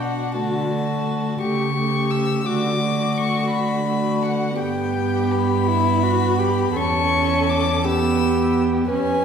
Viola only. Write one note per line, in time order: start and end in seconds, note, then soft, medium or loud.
0.00 0.36 D4 soft
0.37 0.71 A3 soft
0.72 1.41 A3 soft
1.42 1.76 A3 soft
1.77 2.44 A3 soft
2.46 2.80 A3 soft
2.81 3.85 A3 soft
3.87 4.57 A3 soft
4.59 6.77 B3 medium
6.76 7.87 C#4 medium
7.85 8.90 B3 medium
8.91 9.25 C#4 medium